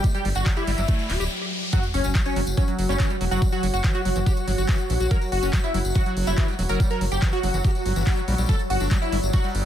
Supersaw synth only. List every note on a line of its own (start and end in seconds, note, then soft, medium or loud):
0.14 0.25 G4 medium
0.36 0.46 F#4 medium
0.57 1.31 E4 loud
1.73 1.83 F#4 loud
1.94 2.10 C#4 loud
2.26 2.41 C#4 medium
2.57 2.73 C#4 loud
2.89 3.10 C#4 loud
3.31 3.42 F#4 medium
3.52 3.63 F#4 medium
3.74 3.84 F#4 medium
3.95 5.02 F#4 loud
5.11 5.21 A#4 loud
5.32 5.48 F#4 loud
5.64 5.79 E4 medium
5.95 6.11 F#4 loud
6.27 6.48 E4 medium
6.69 6.80 A#4 medium
6.91 7.01 A#4 medium
7.12 7.22 G4 medium
7.33 8.41 F#4 loud
8.49 8.59 A4 loud
8.70 8.86 F#4 loud
9.02 9.17 E4 medium
9.34 9.49 F#4 loud